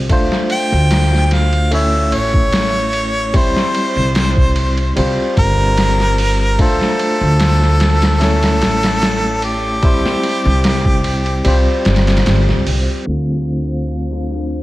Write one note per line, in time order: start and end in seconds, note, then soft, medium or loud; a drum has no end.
0.00 0.11 G3 medium
0.00 0.12 C4 medium
0.00 0.12 F4 medium
0.00 0.12 C5 medium
0.09 1.64 A3 medium
0.09 1.65 D4 medium
0.09 1.66 F4 medium
0.09 1.66 C5 medium
0.09 kick loud
0.09 ride medium
0.32 snare soft
0.50 1.26 G5 loud
0.50 ride medium
0.72 2.13 D2 medium
0.91 snare loud
0.91 ride medium
1.13 snare soft
1.26 1.34 G5 medium
1.31 1.73 F5 medium
1.31 snare soft
1.31 ride medium
1.53 ride soft
1.71 3.26 A3 medium
1.71 3.27 C#4 medium
1.71 3.27 E4 medium
1.71 3.28 C#5 medium
1.71 2.16 E5 loud
1.71 ride medium
2.12 3.31 A1 medium
2.12 3.38 C#5 loud
2.12 ride medium
2.34 kick medium
2.52 snare loud
2.52 ride medium
2.93 ride medium
3.33 4.88 G3 medium
3.33 4.89 C4 medium
3.33 4.89 E4 medium
3.33 4.97 C5 medium
3.33 4.90 C5 medium
3.33 kick loud
3.33 ride medium
3.57 snare medium
3.75 ride medium
3.96 4.93 C2 medium
4.15 snare loud
4.15 ride medium
4.37 kick medium
4.56 ride medium
4.77 ride soft
4.96 5.16 C2 medium
4.96 6.51 G3 medium
4.96 6.51 C4 medium
4.96 6.52 F4 medium
4.96 6.52 C5 medium
4.96 ride medium
5.37 6.55 G1 loud
5.37 6.56 A#4 loud
5.37 kick medium
5.37 ride medium
5.77 snare loud
5.77 ride medium
6.00 snare soft
6.18 open hi-hat medium
6.58 8.13 A3 medium
6.58 8.14 D4 medium
6.58 8.14 F4 medium
6.58 8.18 A4 loud
6.58 8.15 C5 medium
6.58 kick loud
6.58 ride medium
6.81 snare medium
6.99 ride medium
7.21 8.61 D2 medium
7.40 snare loud
7.40 ride medium
7.62 snare soft
7.80 snare loud
7.80 ride medium
8.02 snare loud
8.02 ride medium
8.20 9.75 A3 medium
8.20 9.75 C#4 medium
8.20 9.76 E4 medium
8.20 9.39 A4 loud
8.20 9.77 C#5 medium
8.20 snare medium
8.20 ride medium
8.43 snare loud
8.43 ride medium
8.61 9.79 A1 medium
8.61 snare loud
8.61 ride medium
8.83 snare loud
8.83 ride medium
9.02 snare loud
9.02 ride medium
9.42 11.82 G4 medium
9.42 ride medium
9.82 11.37 G3 medium
9.82 11.38 C4 medium
9.82 11.38 E4 medium
9.82 11.39 C5 medium
9.82 kick loud
9.82 ride medium
10.05 snare medium
10.23 ride medium
10.45 11.42 C2 loud
10.64 snare loud
10.64 ride medium
10.85 kick medium
11.04 ride medium
11.26 ride soft
11.45 11.64 C2 medium
11.45 12.99 G3 medium
11.45 13.00 C4 medium
11.45 13.01 F4 medium
11.45 13.01 C5 medium
11.45 ride medium
11.85 12.26 G1 medium
11.85 snare medium
11.85 ride medium
11.96 snare medium
11.96 ride medium
12.07 snare medium
12.07 ride medium
12.17 snare medium
12.17 ride medium
12.26 12.49 G1 medium
12.26 snare loud
12.26 ride medium
12.48 12.64 C2 medium
12.48 snare soft
12.67 12.86 C2 medium
12.67 open hi-hat medium
13.06 14.63 D2 medium
13.06 14.63 D3 medium
13.06 14.63 A3 medium
13.06 14.63 C4 medium
13.06 14.63 D4 medium
13.06 14.63 F4 medium
13.06 14.63 C5 medium
13.06 14.63 F5 medium
13.06 ride medium
13.30 snare soft
13.48 ride medium
13.88 ride medium
14.11 snare soft
14.29 snare soft
14.29 ride medium
14.50 ride soft